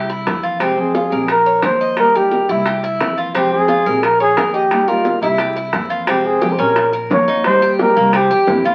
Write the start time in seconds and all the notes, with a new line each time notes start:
Already playing: C2 E4
0.10 E4, high bongo
0.25 F2 E3 A#3 C4 E4, high bongo, low bongo
0.43 F4
0.59 C3 F3 G#3 C4 G4, high bongo
0.77 F3 G#3 C4 G#4
0.95 F4, high bongo
1.10 A#1 F3 G#3 C4 G4 A#4
1.28 A#4, muted nylon-string guitar stroke, high bongo
1.46 C#5
1.62 D#2 F3 A#3 C#4 F4 A#4 C5, high bongo, low bongo
1.81 D#5
1.97 D#3 G3 A#3 D#4 G4 A#4, high bongo
2.14 G3 A#3 D#4 G4 A#4, high bongo
2.32 high bongo
2.48 C2 G3 A#3 D#4 E4 G4, high bongo
2.66 G4, muted nylon-string guitar stroke, high bongo
2.83 E4, high bongo
3.00 F2 E3 A#3 C4 E4, high bongo, low bongo
3.18 F4
3.35 C3 F3 G#3 C4 G4, high bongo
3.53 F3 G#3 C4 G#4
3.68 F4, high bongo
3.86 A#1 F3 G#3 C4 G4 A#4
4.03 A#4, muted nylon-string guitar stroke, high bongo
4.20 G#4 C#5
4.35 D#2 F3 A#3 C#4 F4 A#4, high bongo, low bongo
4.54 G4 D#5
4.71 D#3 G3 A#3 D#4 G4, high bongo
4.88 G3 A#3 D#4 F4 G4 A#4, high bongo
5.05 high bongo
5.22 C2 G3 A#3 D#4 E4 G4, high bongo
5.38 G4, muted nylon-string guitar stroke, high bongo
5.56 E4, high bongo
5.73 F2 E3 A#3 C4 E4, high bongo, low bongo
5.90 F4
6.07 C3 F3 G#3 C4 G4, high bongo
6.24 G#4, high bongo
6.41 C3 F3 G#3 C4 G4, high bongo
6.52 C5
6.58 A#1 G#3 C4 C#4 G4 A#4
6.76 muted nylon-string guitar stroke, high bongo
6.93 A#4, high bongo
7.10 D#2 F3 A#3 C#4 F4 C#5, high bongo, low bongo
7.28 A#3 C#4 D#4 F4, high bongo
7.44 D#3 G3 A#3 D#4 G4 C5, high bongo
7.62 G4, high bongo
7.79 D#3 G3 A#3 D#4 G4 A#4, high bongo
7.96 C2 A#3 D#4 G4
8.13 C4 G4, muted nylon-string guitar stroke, high bongo
8.30 E2 G4, high bongo
8.47 F2 C3 E3 A#3 C4 E4, high bongo, low bongo
8.64 A#3 C4 E4 F4, high bongo